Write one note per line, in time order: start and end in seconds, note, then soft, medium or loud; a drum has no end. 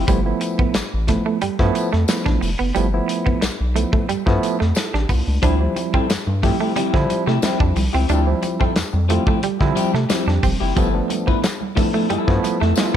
0.00 0.25 C4 medium
0.00 0.24 F4 medium
0.08 0.33 G1 loud
0.08 0.19 F3 medium
0.08 0.22 G3 loud
0.08 0.19 A3 medium
0.08 0.19 B3 medium
0.08 0.19 E4 loud
0.08 kick loud
0.08 closed hi-hat medium
0.08 tambourine medium
0.26 0.74 F3 medium
0.26 0.74 A3 medium
0.26 0.74 B3 medium
0.26 0.74 E4 loud
0.41 muted clean electric guitar stroke soft
0.41 closed hi-hat medium
0.41 tambourine soft
0.59 0.66 A1 soft
0.59 0.71 B3 medium
0.59 kick loud
0.74 0.82 A1 soft
0.74 muted clean electric guitar stroke soft
0.74 snare loud
0.74 closed hi-hat medium
0.74 tambourine medium
0.94 1.18 A1 medium
1.08 1.38 F3 medium
1.08 1.38 A3 medium
1.08 1.22 A3 medium
1.08 1.38 B3 medium
1.08 1.38 E4 medium
1.08 kick medium
1.08 snare soft
1.08 closed hi-hat medium
1.08 tambourine soft
1.26 1.38 A3 medium
1.42 1.50 G2 medium
1.42 1.56 G3 loud
1.42 closed hi-hat medium
1.59 1.71 G2 medium
1.59 1.89 F3 loud
1.59 1.89 A3 loud
1.59 1.89 B3 loud
1.59 1.89 E4 loud
1.59 kick medium
1.59 snare soft
1.75 muted clean electric guitar stroke soft
1.75 closed hi-hat medium
1.75 tambourine medium
1.93 2.05 F2 loud
1.93 2.05 A3 medium
1.93 snare soft
2.08 2.48 F3 medium
2.08 2.48 A3 medium
2.08 2.49 B3 medium
2.08 2.49 E4 medium
2.08 snare loud
2.08 closed hi-hat medium
2.08 tambourine loud
2.26 2.38 A1 loud
2.26 2.38 D4 medium
2.26 kick loud
2.26 snare soft
2.41 2.55 F1 medium
2.41 muted clean electric guitar stroke soft
2.41 open hi-hat medium
2.41 tambourine medium
2.59 2.72 F#1 medium
2.59 2.72 B3 loud
2.75 3.01 G1 loud
2.75 2.86 F3 loud
2.75 2.89 G3 medium
2.75 2.86 A3 medium
2.75 2.86 B3 medium
2.75 2.86 E4 loud
2.75 closed hi-hat medium
2.75 tambourine medium
2.93 3.42 F3 medium
2.93 3.42 A3 medium
2.93 3.42 B3 medium
2.93 3.42 E4 loud
3.08 muted clean electric guitar stroke soft
3.08 closed hi-hat medium
3.08 tambourine medium
3.26 3.33 B1 soft
3.26 3.38 B3 medium
3.26 kick medium
3.41 3.50 B1 medium
3.41 muted clean electric guitar stroke soft
3.41 snare loud
3.41 closed hi-hat medium
3.41 tambourine medium
3.61 3.85 B1 medium
3.75 4.05 F3 medium
3.75 4.05 A3 medium
3.75 3.89 A3 medium
3.75 4.05 B3 medium
3.75 4.06 E4 medium
3.75 closed hi-hat medium
3.75 tambourine soft
3.93 4.05 A3 medium
3.93 kick loud
4.09 4.17 G2 soft
4.09 4.23 G3 loud
4.09 closed hi-hat medium
4.09 tambourine soft
4.26 4.39 G2 medium
4.26 4.56 F3 loud
4.26 4.56 A3 loud
4.26 4.56 B3 loud
4.26 4.56 E4 loud
4.26 muted clean electric guitar stroke soft
4.26 kick loud
4.26 snare soft
4.43 closed hi-hat medium
4.43 tambourine medium
4.60 4.73 F2 loud
4.60 4.72 A3 medium
4.60 snare soft
4.75 4.93 E4 medium
4.75 4.93 A4 medium
4.75 muted clean electric guitar stroke soft
4.75 snare loud
4.75 closed hi-hat medium
4.75 tambourine loud
4.94 5.05 A1 medium
4.94 5.06 D4 medium
4.94 5.09 D4 medium
4.94 5.08 G4 medium
4.94 snare soft
5.09 5.22 C2 medium
5.09 5.23 B3 medium
5.09 5.27 B3 medium
5.09 5.26 F4 medium
5.09 kick loud
5.09 open hi-hat medium
5.09 tambourine medium
5.27 5.39 C#2 loud
5.27 5.59 A3 medium
5.27 5.59 D4 medium
5.42 5.67 D2 loud
5.42 5.58 F3 medium
5.42 5.53 F3 loud
5.42 5.53 G3 medium
5.42 5.53 C4 medium
5.42 5.59 C4 medium
5.42 5.56 D4 medium
5.42 5.53 E4 loud
5.42 5.59 E4 medium
5.42 5.59 G4 medium
5.42 kick loud
5.42 closed hi-hat medium
5.42 tambourine medium
5.42 muted conga soft
5.60 6.09 F3 medium
5.60 6.09 G3 medium
5.60 6.09 C4 medium
5.60 6.09 E4 loud
5.60 muted clean electric guitar stroke soft
5.76 muted clean electric guitar stroke soft
5.76 closed hi-hat medium
5.76 tambourine medium
5.76 high conga medium
5.94 6.00 G2 soft
5.94 6.06 F3 medium
5.94 6.06 C4 medium
5.94 6.05 C4 medium
5.94 6.05 E4 medium
5.94 6.05 A4 medium
5.94 kick medium
6.10 6.17 G2 soft
6.10 muted clean electric guitar stroke soft
6.10 snare loud
6.10 closed hi-hat medium
6.10 tambourine medium
6.10 muted conga soft
6.26 6.52 G2 medium
6.26 muted clean electric guitar stroke soft
6.26 high conga medium
6.43 6.73 F3 medium
6.43 6.55 F3 medium
6.43 6.73 G3 medium
6.43 6.57 A3 medium
6.43 6.55 C4 medium
6.43 6.73 C4 medium
6.43 6.56 E4 medium
6.43 6.73 G4 medium
6.43 6.56 G4 medium
6.43 kick medium
6.43 snare soft
6.43 open hi-hat medium
6.43 tambourine soft
6.43 low conga medium
6.60 6.72 F3 soft
6.60 6.73 A3 medium
6.60 6.72 C4 medium
6.60 6.72 E4 medium
6.60 6.72 G4 medium
6.76 6.83 D3 medium
6.76 6.92 F3 medium
6.76 6.90 G3 loud
6.76 6.92 C4 loud
6.76 6.92 E4 medium
6.76 6.92 G4 medium
6.76 closed hi-hat medium
6.76 tambourine soft
6.93 7.06 D3 loud
6.93 7.23 F3 loud
6.93 7.23 G3 loud
6.93 7.23 C4 loud
6.93 7.23 E4 loud
6.93 kick medium
6.93 snare soft
7.10 muted clean electric guitar stroke soft
7.10 closed hi-hat medium
7.10 tambourine medium
7.10 high conga medium
7.27 7.39 C3 loud
7.27 7.39 F3 medium
7.27 7.40 A3 medium
7.27 7.39 C4 medium
7.27 7.38 E4 medium
7.27 7.38 G4 medium
7.27 snare soft
7.42 7.83 F3 medium
7.42 7.59 F3 medium
7.42 7.83 G3 medium
7.42 7.83 C4 medium
7.42 7.59 C4 medium
7.42 7.83 E4 medium
7.42 7.59 E4 medium
7.42 7.60 G4 loud
7.42 snare loud
7.42 closed hi-hat medium
7.42 tambourine loud
7.42 muted conga soft
7.42 high conga medium
7.60 7.72 F2 loud
7.60 7.73 D4 medium
7.60 kick loud
7.60 muted conga soft
7.76 7.89 C2 medium
7.76 muted clean electric guitar stroke soft
7.76 open hi-hat medium
7.76 tambourine medium
7.76 high conga medium
7.76 low conga medium
7.93 8.06 C#2 loud
7.93 8.05 F3 medium
7.93 8.05 C4 medium
7.93 8.06 C4 medium
7.93 8.05 E4 medium
7.93 8.05 G4 medium
8.08 8.34 D2 loud
8.08 8.25 F3 medium
8.08 8.20 F3 loud
8.08 8.20 G3 medium
8.08 8.25 C4 medium
8.08 8.20 C4 medium
8.08 8.23 D4 medium
8.08 8.20 D4 loud
8.08 8.26 E4 loud
8.08 8.26 G4 loud
8.08 closed hi-hat medium
8.08 tambourine medium
8.08 muted conga soft
8.27 8.75 F3 medium
8.27 8.75 G3 medium
8.27 8.76 C4 medium
8.27 8.76 E4 loud
8.27 muted clean electric guitar stroke soft
8.27 muted conga soft
8.42 muted clean electric guitar stroke medium
8.42 closed hi-hat medium
8.42 tambourine medium
8.42 high conga medium
8.60 8.67 F2 soft
8.60 8.72 F3 medium
8.60 8.72 C4 medium
8.60 8.73 C4 medium
8.60 8.72 E4 medium
8.60 8.71 A4 medium
8.60 kick medium
8.76 8.84 F2 medium
8.76 muted clean electric guitar stroke soft
8.76 snare loud
8.76 closed hi-hat medium
8.76 tambourine medium
8.76 muted conga soft
8.93 9.18 F2 loud
8.93 muted clean electric guitar stroke medium
8.93 muted conga soft
8.93 high conga medium
9.08 9.22 F3 medium
9.08 9.40 F3 medium
9.08 9.40 G3 medium
9.08 9.24 A3 medium
9.08 9.22 C4 medium
9.08 9.40 C4 medium
9.08 9.22 E4 medium
9.08 9.40 F4 medium
9.08 9.22 G4 medium
9.08 closed hi-hat medium
9.08 low conga medium
9.26 9.39 F3 medium
9.26 9.40 A3 medium
9.26 9.38 C4 medium
9.26 9.38 E4 medium
9.26 9.38 G4 medium
9.26 kick loud
9.42 9.50 D3 soft
9.42 9.57 G3 loud
9.42 muted clean electric guitar stroke soft
9.42 closed hi-hat medium
9.42 muted conga soft
9.60 9.72 D3 medium
9.60 9.90 F3 loud
9.60 9.90 G3 loud
9.60 9.90 C4 loud
9.60 9.90 E4 loud
9.60 muted clean electric guitar stroke medium
9.60 kick medium
9.60 snare soft
9.60 muted conga soft
9.76 9.92 F3 loud
9.76 9.92 C4 medium
9.76 9.92 E4 loud
9.76 9.92 G4 loud
9.76 closed hi-hat medium
9.76 tambourine medium
9.76 high conga medium
9.93 10.06 C3 loud
9.93 10.07 A3 medium
9.93 muted clean electric guitar stroke soft
9.93 snare soft
10.09 10.26 F3 medium
10.09 10.50 F3 medium
10.09 10.50 G3 medium
10.09 10.26 C4 medium
10.09 10.50 C4 medium
10.09 10.26 E4 medium
10.09 10.50 G4 medium
10.09 10.26 G4 medium
10.09 muted clean electric guitar stroke medium
10.09 snare loud
10.09 closed hi-hat medium
10.09 tambourine loud
10.09 muted conga soft
10.09 high conga medium
10.27 10.39 F2 loud
10.27 10.40 D4 medium
10.27 snare soft
10.43 10.56 F1 medium
10.43 10.57 C4 medium
10.43 muted clean electric guitar stroke soft
10.43 kick loud
10.43 open hi-hat medium
10.43 tambourine medium
10.43 high conga medium
10.43 low conga medium
10.60 10.73 F#1 loud
10.60 10.72 F3 medium
10.60 10.72 C4 medium
10.60 10.72 E4 medium
10.60 10.72 G4 medium
10.75 11.01 G1 loud
10.75 10.92 F3 medium
10.75 10.87 F3 loud
10.75 10.90 G3 medium
10.75 10.87 A3 medium
10.75 10.92 B3 medium
10.75 10.87 B3 loud
10.75 10.92 E4 loud
10.75 10.87 E4 loud
10.75 10.93 A4 medium
10.75 kick loud
10.75 closed hi-hat medium
10.75 tambourine medium
10.94 11.43 F3 medium
10.94 11.43 A3 medium
10.94 11.43 B3 medium
10.94 11.43 D4 loud
10.94 muted clean electric guitar stroke soft
11.10 muted clean electric guitar stroke medium
11.10 closed hi-hat medium
11.10 tambourine medium
11.10 high conga medium
11.27 11.34 G2 soft
11.27 11.40 F3 medium
11.27 11.39 F3 soft
11.27 11.39 B3 medium
11.27 11.39 E4 medium
11.27 11.39 B4 medium
11.27 kick loud
11.42 muted clean electric guitar stroke soft
11.42 snare loud
11.42 closed hi-hat loud
11.42 tambourine medium
11.60 muted clean electric guitar stroke soft
11.60 high conga medium
11.76 11.89 F3 medium
11.76 12.06 F3 medium
11.76 12.06 A3 medium
11.76 11.90 A3 medium
11.76 11.89 B3 medium
11.76 12.07 B3 medium
11.76 12.07 D4 medium
11.76 11.89 E4 medium
11.76 11.89 A4 medium
11.76 kick loud
11.76 snare soft
11.76 open hi-hat medium
11.76 tambourine soft
11.76 low conga medium
11.93 12.06 F3 medium
11.93 12.07 A3 medium
11.93 12.05 B3 medium
11.93 12.05 E4 medium
11.93 12.05 A4 medium
12.09 12.18 G2 medium
12.09 12.30 F3 medium
12.09 12.24 G3 medium
12.09 12.31 B3 medium
12.09 12.31 E4 medium
12.09 12.31 A4 medium
12.09 closed hi-hat medium
12.09 muted conga soft
12.27 12.39 G2 medium
12.27 12.57 F3 loud
12.27 12.57 A3 loud
12.27 12.57 B3 loud
12.27 12.57 E4 loud
12.27 kick loud
12.27 snare soft
12.27 muted conga soft
12.43 muted clean electric guitar stroke soft
12.43 closed hi-hat medium
12.43 tambourine medium
12.43 high conga medium
12.60 12.73 F2 loud
12.60 12.72 F3 medium
12.60 12.74 A3 loud
12.60 12.72 B3 medium
12.60 12.72 E4 medium
12.60 12.72 A4 medium
12.60 snare soft
12.76 12.97 F3 medium
12.76 12.97 A3 medium
12.76 12.97 B3 medium
12.76 12.97 E4 medium
12.76 12.97 F4 medium
12.76 12.97 A4 medium
12.76 snare loud
12.76 closed hi-hat medium
12.76 tambourine loud
12.76 muted conga soft
12.76 high conga medium